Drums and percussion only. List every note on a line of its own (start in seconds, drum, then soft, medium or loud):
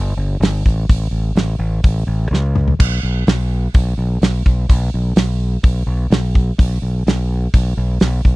0.42 snare loud
0.42 open hi-hat medium
0.66 kick medium
0.89 kick loud
0.89 open hi-hat medium
1.36 snare loud
1.36 open hi-hat medium
1.84 kick loud
1.84 open hi-hat medium
2.34 snare medium
2.55 mid tom medium
2.68 floor tom medium
2.80 kick loud
2.80 crash loud
3.27 snare loud
3.27 open hi-hat medium
3.74 kick loud
3.74 open hi-hat medium
4.22 snare loud
4.22 open hi-hat medium
4.46 kick medium
4.69 kick loud
4.69 open hi-hat medium
5.16 snare loud
5.16 open hi-hat medium
5.63 kick loud
5.63 open hi-hat medium
6.11 snare loud
6.11 open hi-hat medium
6.35 kick medium
6.59 kick loud
6.59 open hi-hat medium
7.07 snare loud
7.07 open hi-hat medium
7.54 kick loud
7.54 open hi-hat medium
8.00 snare loud
8.00 open hi-hat medium
8.25 kick medium